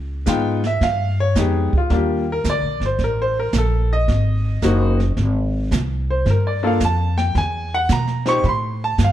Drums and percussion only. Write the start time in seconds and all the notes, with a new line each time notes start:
0.26 kick, snare, hi-hat pedal
0.64 snare
0.81 brush sweep, kick, snare
1.35 kick, snare, hi-hat pedal
1.73 kick
1.90 brush sweep, kick, snare
2.44 kick, snare, hi-hat pedal
2.81 snare
2.99 brush sweep, kick, snare
3.53 kick, snare, hi-hat pedal
4.08 brush sweep, kick, snare
4.62 kick, snare, hi-hat pedal
5.00 snare
5.17 brush sweep, kick, snare
5.71 kick, snare, hi-hat pedal
6.26 brush sweep, kick, snare
6.80 kick, snare, hi-hat pedal
7.18 snare
7.35 brush sweep, kick, snare
7.89 kick, snare, hi-hat pedal
8.07 snare
8.26 snare
8.44 brush sweep, kick, snare
8.98 kick, snare, hi-hat pedal